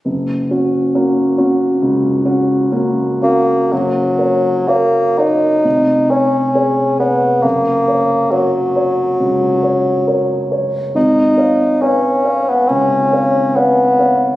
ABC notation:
X:1
M:4/4
L:1/16
Q:1/4=68
K:F#
V:1 name="Grand piano"
F,,,2 [CF]2 [A,CF]2 [CF]2 C,,2 [CF]2 [A,CF]2 [CF]2 | F,,,2 [Ac]2 [FAc]2 [Ac]2 E,,,2 c2 [Gc]2 c2 | F,,,2 c2 [Ac]2 c2 C,,2 c2 [Ac]2 c2 | G,,,2 [ce]2 [Bce]2 [ce]2 C,,2 [ce]2 [Bce]2 [ce]2 |]
V:2 name="Bassoon"
z12 z2 A,2 | F,4 A,2 D4 C4 B,2 | A,4 F,8- F,2 z2 | D4 C3 B, C4 B,4 |]